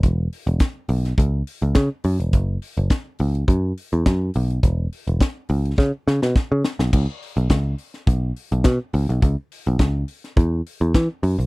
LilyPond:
<<
  \new Staff \with { instrumentName = "Picked electric bass" } { \clef bass \time 4/4 \key b \mixolydian \tempo 4 = 104 e,,8 r16 e,,16 r8 b,,8 cis,8 r16 cis,16 cis16 r16 fis,16 e,,16 | fis,,8 r16 fis,,16 r8 cis,8 fis,8 r16 e,16 fis,8 b,,8 | e,,8 r16 e,,16 r8 cis,8 cis16 r16 cis16 b,16 r16 cis16 r16 b,,16 | cis,16 r8 b,,16 cis,8 r8 b,,8 r16 b,,16 b,16 r16 cis,16 b,,16 |
cis,16 r8 b,,16 cis,8 r8 e,8 r16 e,16 e16 r16 fis,16 b,,16 | }
  \new DrumStaff \with { instrumentName = "Drums" } \drummode { \time 4/4 <hh bd>8 hho16 hh16 <hh bd sn>8 hho16 <hh sn>16 <hh bd>8 hho16 hh16 <hh bd sn>8 hho16 hh16 | <hh bd>8 hho16 hh16 <hh bd sn>8 hho16 hh16 <hh bd>8 hho16 hh16 <hh bd sn>8 hho16 hh16 | <hh bd>8 hho16 hh16 <hh bd sn>8 hho16 hh16 <bd sn>8 sn16 sn16 <bd sn>8 sn16 sn16 | <cymc bd>8 hho16 hh16 <hh bd sn>8 hho16 <hh sn>16 <hh bd>8 hho16 hh16 <hh bd sn>8 hho16 hh16 |
<hh bd>8 hho16 hh16 <hh bd sn>8 hho16 <hh sn>16 <hh bd>8 hho16 hh16 <hh bd sn>8 hho16 hh16 | }
>>